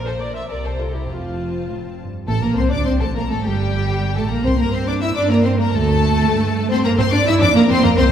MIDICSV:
0, 0, Header, 1, 6, 480
1, 0, Start_track
1, 0, Key_signature, -1, "major"
1, 0, Tempo, 585938
1, 893, Time_signature, 2, 2, 24, 8
1, 3289, Tempo, 565504
1, 6772, End_track
2, 0, Start_track
2, 0, Title_t, "Violin section"
2, 0, Program_c, 0, 48
2, 0, Note_on_c, 0, 82, 53
2, 373, Note_off_c, 0, 82, 0
2, 411, Note_on_c, 0, 82, 47
2, 886, Note_off_c, 0, 82, 0
2, 899, Note_on_c, 0, 81, 49
2, 1704, Note_off_c, 0, 81, 0
2, 1869, Note_on_c, 0, 81, 94
2, 1977, Note_off_c, 0, 81, 0
2, 1988, Note_on_c, 0, 82, 82
2, 2101, Note_on_c, 0, 84, 89
2, 2103, Note_off_c, 0, 82, 0
2, 2149, Note_off_c, 0, 84, 0
2, 2232, Note_on_c, 0, 86, 91
2, 2341, Note_on_c, 0, 84, 91
2, 2342, Note_off_c, 0, 86, 0
2, 2388, Note_off_c, 0, 84, 0
2, 2461, Note_on_c, 0, 81, 86
2, 2576, Note_off_c, 0, 81, 0
2, 2583, Note_on_c, 0, 82, 84
2, 2696, Note_off_c, 0, 82, 0
2, 2708, Note_on_c, 0, 81, 84
2, 2817, Note_on_c, 0, 79, 100
2, 2821, Note_off_c, 0, 81, 0
2, 3400, Note_off_c, 0, 79, 0
2, 3420, Note_on_c, 0, 81, 86
2, 3527, Note_on_c, 0, 82, 83
2, 3537, Note_off_c, 0, 81, 0
2, 3650, Note_off_c, 0, 82, 0
2, 3662, Note_on_c, 0, 84, 92
2, 3777, Note_on_c, 0, 82, 95
2, 3778, Note_off_c, 0, 84, 0
2, 3895, Note_off_c, 0, 82, 0
2, 3901, Note_on_c, 0, 84, 86
2, 4014, Note_on_c, 0, 86, 96
2, 4018, Note_off_c, 0, 84, 0
2, 4062, Note_off_c, 0, 86, 0
2, 4137, Note_on_c, 0, 88, 97
2, 4254, Note_off_c, 0, 88, 0
2, 4258, Note_on_c, 0, 86, 103
2, 4305, Note_off_c, 0, 86, 0
2, 4389, Note_on_c, 0, 82, 89
2, 4434, Note_off_c, 0, 82, 0
2, 4499, Note_on_c, 0, 84, 91
2, 4546, Note_off_c, 0, 84, 0
2, 4630, Note_on_c, 0, 82, 99
2, 4739, Note_off_c, 0, 82, 0
2, 4741, Note_on_c, 0, 81, 116
2, 5574, Note_off_c, 0, 81, 0
2, 5583, Note_on_c, 0, 84, 106
2, 5628, Note_off_c, 0, 84, 0
2, 5695, Note_on_c, 0, 82, 117
2, 5742, Note_off_c, 0, 82, 0
2, 5822, Note_on_c, 0, 84, 110
2, 5933, Note_off_c, 0, 84, 0
2, 5934, Note_on_c, 0, 86, 118
2, 6052, Note_off_c, 0, 86, 0
2, 6064, Note_on_c, 0, 88, 125
2, 6109, Note_off_c, 0, 88, 0
2, 6178, Note_on_c, 0, 86, 127
2, 6292, Note_off_c, 0, 86, 0
2, 6305, Note_on_c, 0, 82, 112
2, 6350, Note_off_c, 0, 82, 0
2, 6417, Note_on_c, 0, 84, 125
2, 6531, Note_off_c, 0, 84, 0
2, 6535, Note_on_c, 0, 82, 115
2, 6582, Note_off_c, 0, 82, 0
2, 6654, Note_on_c, 0, 84, 127
2, 6702, Note_off_c, 0, 84, 0
2, 6772, End_track
3, 0, Start_track
3, 0, Title_t, "Violin section"
3, 0, Program_c, 1, 48
3, 51, Note_on_c, 1, 69, 57
3, 98, Note_off_c, 1, 69, 0
3, 169, Note_on_c, 1, 70, 55
3, 285, Note_off_c, 1, 70, 0
3, 286, Note_on_c, 1, 72, 56
3, 334, Note_off_c, 1, 72, 0
3, 407, Note_on_c, 1, 70, 60
3, 455, Note_off_c, 1, 70, 0
3, 525, Note_on_c, 1, 69, 50
3, 574, Note_off_c, 1, 69, 0
3, 649, Note_on_c, 1, 65, 54
3, 698, Note_off_c, 1, 65, 0
3, 771, Note_on_c, 1, 64, 51
3, 890, Note_on_c, 1, 60, 54
3, 891, Note_off_c, 1, 64, 0
3, 1610, Note_off_c, 1, 60, 0
3, 1864, Note_on_c, 1, 69, 91
3, 1975, Note_off_c, 1, 69, 0
3, 1979, Note_on_c, 1, 70, 75
3, 2098, Note_on_c, 1, 72, 76
3, 2099, Note_off_c, 1, 70, 0
3, 2218, Note_off_c, 1, 72, 0
3, 2220, Note_on_c, 1, 74, 81
3, 2338, Note_off_c, 1, 74, 0
3, 2341, Note_on_c, 1, 72, 76
3, 2388, Note_off_c, 1, 72, 0
3, 2456, Note_on_c, 1, 69, 71
3, 2504, Note_off_c, 1, 69, 0
3, 2578, Note_on_c, 1, 70, 80
3, 2694, Note_off_c, 1, 70, 0
3, 2700, Note_on_c, 1, 69, 77
3, 2815, Note_off_c, 1, 69, 0
3, 2818, Note_on_c, 1, 67, 88
3, 3413, Note_off_c, 1, 67, 0
3, 3413, Note_on_c, 1, 69, 76
3, 3533, Note_off_c, 1, 69, 0
3, 3540, Note_on_c, 1, 70, 77
3, 3657, Note_off_c, 1, 70, 0
3, 3658, Note_on_c, 1, 72, 77
3, 3705, Note_off_c, 1, 72, 0
3, 3779, Note_on_c, 1, 70, 95
3, 3894, Note_off_c, 1, 70, 0
3, 3898, Note_on_c, 1, 72, 76
3, 4014, Note_off_c, 1, 72, 0
3, 4016, Note_on_c, 1, 74, 80
3, 4135, Note_off_c, 1, 74, 0
3, 4137, Note_on_c, 1, 76, 82
3, 4184, Note_off_c, 1, 76, 0
3, 4259, Note_on_c, 1, 74, 91
3, 4375, Note_off_c, 1, 74, 0
3, 4375, Note_on_c, 1, 70, 81
3, 4494, Note_off_c, 1, 70, 0
3, 4495, Note_on_c, 1, 72, 85
3, 4614, Note_off_c, 1, 72, 0
3, 4615, Note_on_c, 1, 70, 85
3, 4731, Note_off_c, 1, 70, 0
3, 4735, Note_on_c, 1, 69, 100
3, 5566, Note_on_c, 1, 72, 93
3, 5571, Note_off_c, 1, 69, 0
3, 5685, Note_off_c, 1, 72, 0
3, 5693, Note_on_c, 1, 70, 118
3, 5740, Note_off_c, 1, 70, 0
3, 5810, Note_on_c, 1, 72, 93
3, 5858, Note_off_c, 1, 72, 0
3, 5926, Note_on_c, 1, 74, 101
3, 6046, Note_off_c, 1, 74, 0
3, 6047, Note_on_c, 1, 76, 96
3, 6095, Note_off_c, 1, 76, 0
3, 6168, Note_on_c, 1, 74, 106
3, 6217, Note_off_c, 1, 74, 0
3, 6287, Note_on_c, 1, 70, 98
3, 6406, Note_off_c, 1, 70, 0
3, 6417, Note_on_c, 1, 72, 110
3, 6533, Note_off_c, 1, 72, 0
3, 6533, Note_on_c, 1, 70, 110
3, 6652, Note_off_c, 1, 70, 0
3, 6653, Note_on_c, 1, 72, 127
3, 6772, Note_off_c, 1, 72, 0
3, 6772, End_track
4, 0, Start_track
4, 0, Title_t, "Viola section"
4, 0, Program_c, 2, 48
4, 55, Note_on_c, 2, 72, 76
4, 167, Note_on_c, 2, 74, 74
4, 171, Note_off_c, 2, 72, 0
4, 286, Note_off_c, 2, 74, 0
4, 289, Note_on_c, 2, 76, 64
4, 405, Note_off_c, 2, 76, 0
4, 408, Note_on_c, 2, 74, 72
4, 525, Note_off_c, 2, 74, 0
4, 536, Note_on_c, 2, 72, 66
4, 641, Note_on_c, 2, 69, 64
4, 653, Note_off_c, 2, 72, 0
4, 767, Note_off_c, 2, 69, 0
4, 773, Note_on_c, 2, 67, 61
4, 892, Note_on_c, 2, 65, 63
4, 895, Note_off_c, 2, 67, 0
4, 1626, Note_off_c, 2, 65, 0
4, 1862, Note_on_c, 2, 57, 86
4, 1910, Note_off_c, 2, 57, 0
4, 1978, Note_on_c, 2, 58, 77
4, 2096, Note_off_c, 2, 58, 0
4, 2100, Note_on_c, 2, 60, 84
4, 2219, Note_off_c, 2, 60, 0
4, 2220, Note_on_c, 2, 62, 72
4, 2337, Note_on_c, 2, 60, 81
4, 2338, Note_off_c, 2, 62, 0
4, 2384, Note_off_c, 2, 60, 0
4, 2456, Note_on_c, 2, 57, 71
4, 2504, Note_off_c, 2, 57, 0
4, 2573, Note_on_c, 2, 58, 71
4, 2622, Note_off_c, 2, 58, 0
4, 2699, Note_on_c, 2, 57, 74
4, 2746, Note_off_c, 2, 57, 0
4, 2821, Note_on_c, 2, 55, 91
4, 3402, Note_off_c, 2, 55, 0
4, 3413, Note_on_c, 2, 57, 76
4, 3533, Note_off_c, 2, 57, 0
4, 3535, Note_on_c, 2, 58, 76
4, 3652, Note_off_c, 2, 58, 0
4, 3654, Note_on_c, 2, 60, 78
4, 3769, Note_on_c, 2, 58, 91
4, 3772, Note_off_c, 2, 60, 0
4, 3818, Note_off_c, 2, 58, 0
4, 3893, Note_on_c, 2, 60, 83
4, 4011, Note_off_c, 2, 60, 0
4, 4015, Note_on_c, 2, 62, 91
4, 4063, Note_off_c, 2, 62, 0
4, 4134, Note_on_c, 2, 64, 82
4, 4252, Note_off_c, 2, 64, 0
4, 4254, Note_on_c, 2, 62, 92
4, 4372, Note_off_c, 2, 62, 0
4, 4372, Note_on_c, 2, 58, 82
4, 4493, Note_off_c, 2, 58, 0
4, 4493, Note_on_c, 2, 60, 86
4, 4541, Note_off_c, 2, 60, 0
4, 4613, Note_on_c, 2, 58, 89
4, 4661, Note_off_c, 2, 58, 0
4, 4731, Note_on_c, 2, 57, 114
4, 5552, Note_off_c, 2, 57, 0
4, 5561, Note_on_c, 2, 60, 102
4, 5685, Note_off_c, 2, 60, 0
4, 5686, Note_on_c, 2, 58, 117
4, 5734, Note_off_c, 2, 58, 0
4, 5800, Note_on_c, 2, 60, 96
4, 5850, Note_off_c, 2, 60, 0
4, 5921, Note_on_c, 2, 62, 104
4, 5971, Note_off_c, 2, 62, 0
4, 6041, Note_on_c, 2, 64, 104
4, 6159, Note_on_c, 2, 62, 119
4, 6163, Note_off_c, 2, 64, 0
4, 6282, Note_on_c, 2, 58, 101
4, 6284, Note_off_c, 2, 62, 0
4, 6396, Note_on_c, 2, 60, 108
4, 6403, Note_off_c, 2, 58, 0
4, 6520, Note_off_c, 2, 60, 0
4, 6523, Note_on_c, 2, 58, 115
4, 6640, Note_on_c, 2, 60, 126
4, 6647, Note_off_c, 2, 58, 0
4, 6691, Note_off_c, 2, 60, 0
4, 6772, End_track
5, 0, Start_track
5, 0, Title_t, "Cello section"
5, 0, Program_c, 3, 48
5, 0, Note_on_c, 3, 46, 52
5, 375, Note_off_c, 3, 46, 0
5, 412, Note_on_c, 3, 48, 53
5, 886, Note_off_c, 3, 48, 0
5, 899, Note_on_c, 3, 41, 50
5, 1338, Note_off_c, 3, 41, 0
5, 1386, Note_on_c, 3, 45, 55
5, 1452, Note_off_c, 3, 45, 0
5, 1630, Note_on_c, 3, 43, 50
5, 1863, Note_off_c, 3, 43, 0
5, 1871, Note_on_c, 3, 57, 84
5, 1917, Note_off_c, 3, 57, 0
5, 1988, Note_on_c, 3, 58, 72
5, 2101, Note_off_c, 3, 58, 0
5, 2108, Note_on_c, 3, 60, 73
5, 2223, Note_off_c, 3, 60, 0
5, 2227, Note_on_c, 3, 62, 73
5, 2339, Note_off_c, 3, 62, 0
5, 2342, Note_on_c, 3, 60, 83
5, 2456, Note_off_c, 3, 60, 0
5, 2460, Note_on_c, 3, 57, 75
5, 2578, Note_off_c, 3, 57, 0
5, 2579, Note_on_c, 3, 58, 83
5, 2626, Note_off_c, 3, 58, 0
5, 2698, Note_on_c, 3, 57, 70
5, 2814, Note_off_c, 3, 57, 0
5, 2820, Note_on_c, 3, 55, 79
5, 3414, Note_off_c, 3, 55, 0
5, 3415, Note_on_c, 3, 57, 79
5, 3463, Note_off_c, 3, 57, 0
5, 3534, Note_on_c, 3, 58, 83
5, 3652, Note_off_c, 3, 58, 0
5, 3657, Note_on_c, 3, 60, 75
5, 3776, Note_off_c, 3, 60, 0
5, 3776, Note_on_c, 3, 58, 83
5, 3893, Note_off_c, 3, 58, 0
5, 3902, Note_on_c, 3, 60, 81
5, 4016, Note_off_c, 3, 60, 0
5, 4022, Note_on_c, 3, 62, 79
5, 4137, Note_on_c, 3, 64, 78
5, 4138, Note_off_c, 3, 62, 0
5, 4256, Note_off_c, 3, 64, 0
5, 4258, Note_on_c, 3, 62, 96
5, 4374, Note_off_c, 3, 62, 0
5, 4377, Note_on_c, 3, 58, 85
5, 4493, Note_off_c, 3, 58, 0
5, 4495, Note_on_c, 3, 60, 95
5, 4611, Note_on_c, 3, 58, 73
5, 4614, Note_off_c, 3, 60, 0
5, 4659, Note_off_c, 3, 58, 0
5, 4733, Note_on_c, 3, 57, 96
5, 5553, Note_off_c, 3, 57, 0
5, 5571, Note_on_c, 3, 60, 93
5, 5688, Note_off_c, 3, 60, 0
5, 5691, Note_on_c, 3, 58, 106
5, 5809, Note_on_c, 3, 60, 103
5, 5810, Note_off_c, 3, 58, 0
5, 5857, Note_off_c, 3, 60, 0
5, 5931, Note_on_c, 3, 62, 98
5, 6048, Note_off_c, 3, 62, 0
5, 6050, Note_on_c, 3, 64, 107
5, 6170, Note_off_c, 3, 64, 0
5, 6172, Note_on_c, 3, 62, 120
5, 6290, Note_on_c, 3, 58, 105
5, 6291, Note_off_c, 3, 62, 0
5, 6338, Note_off_c, 3, 58, 0
5, 6412, Note_on_c, 3, 60, 117
5, 6527, Note_on_c, 3, 58, 99
5, 6528, Note_off_c, 3, 60, 0
5, 6576, Note_off_c, 3, 58, 0
5, 6650, Note_on_c, 3, 60, 125
5, 6699, Note_off_c, 3, 60, 0
5, 6772, End_track
6, 0, Start_track
6, 0, Title_t, "Double bass section"
6, 0, Program_c, 4, 48
6, 0, Note_on_c, 4, 34, 59
6, 372, Note_off_c, 4, 34, 0
6, 407, Note_on_c, 4, 36, 52
6, 884, Note_off_c, 4, 36, 0
6, 892, Note_on_c, 4, 29, 53
6, 1700, Note_off_c, 4, 29, 0
6, 1863, Note_on_c, 4, 33, 97
6, 1974, Note_off_c, 4, 33, 0
6, 1979, Note_on_c, 4, 34, 73
6, 2027, Note_off_c, 4, 34, 0
6, 2099, Note_on_c, 4, 36, 84
6, 2216, Note_off_c, 4, 36, 0
6, 2218, Note_on_c, 4, 38, 77
6, 2335, Note_off_c, 4, 38, 0
6, 2337, Note_on_c, 4, 36, 85
6, 2456, Note_off_c, 4, 36, 0
6, 2457, Note_on_c, 4, 33, 77
6, 2576, Note_off_c, 4, 33, 0
6, 2577, Note_on_c, 4, 34, 76
6, 2694, Note_on_c, 4, 33, 74
6, 2696, Note_off_c, 4, 34, 0
6, 2814, Note_off_c, 4, 33, 0
6, 2817, Note_on_c, 4, 31, 85
6, 3400, Note_off_c, 4, 31, 0
6, 3412, Note_on_c, 4, 33, 77
6, 3532, Note_on_c, 4, 34, 81
6, 3533, Note_off_c, 4, 33, 0
6, 3653, Note_off_c, 4, 34, 0
6, 3653, Note_on_c, 4, 36, 75
6, 3701, Note_off_c, 4, 36, 0
6, 3773, Note_on_c, 4, 43, 84
6, 4198, Note_off_c, 4, 43, 0
6, 4256, Note_on_c, 4, 43, 85
6, 4678, Note_off_c, 4, 43, 0
6, 4734, Note_on_c, 4, 38, 98
6, 5156, Note_off_c, 4, 38, 0
6, 5213, Note_on_c, 4, 43, 90
6, 5634, Note_off_c, 4, 43, 0
6, 5687, Note_on_c, 4, 43, 116
6, 5735, Note_off_c, 4, 43, 0
6, 5810, Note_on_c, 4, 43, 74
6, 5858, Note_off_c, 4, 43, 0
6, 5929, Note_on_c, 4, 43, 75
6, 5977, Note_off_c, 4, 43, 0
6, 6044, Note_on_c, 4, 43, 104
6, 6094, Note_off_c, 4, 43, 0
6, 6165, Note_on_c, 4, 41, 80
6, 6214, Note_off_c, 4, 41, 0
6, 6284, Note_on_c, 4, 41, 80
6, 6333, Note_off_c, 4, 41, 0
6, 6404, Note_on_c, 4, 41, 102
6, 6453, Note_off_c, 4, 41, 0
6, 6523, Note_on_c, 4, 41, 84
6, 6573, Note_off_c, 4, 41, 0
6, 6644, Note_on_c, 4, 36, 126
6, 6694, Note_off_c, 4, 36, 0
6, 6772, End_track
0, 0, End_of_file